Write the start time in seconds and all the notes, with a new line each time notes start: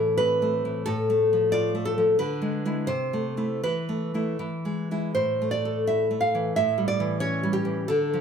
Already playing: A2 E3 A3 A4
0.18 C4 B4
0.42 A3
0.65 E3
0.86 A2 A4
1.10 A3
1.33 F3
1.52 F4 D5
1.75 A3
1.85 A4
1.98 F3
2.19 D3 B4
2.42 G#3
2.65 G#3 E4
2.87 C3 C5
3.13 A3
3.37 A3 E4
3.64 E3 B4
3.89 A3
4.14 A3 E4
4.39 E3
4.65 G#3
4.91 G#3 E4
5.15 A2 C5
5.42 A3
5.51 D5
5.65 A4
5.87 E4 E5
6.11 A3
6.21 F5
6.35 E3
6.56 A2 E5
6.78 G3
6.88 D5
7.00 E3
7.20 C#4 C#5
7.43 G3
7.53 G4
7.65 E3
7.88 D3 A4
8.14 F3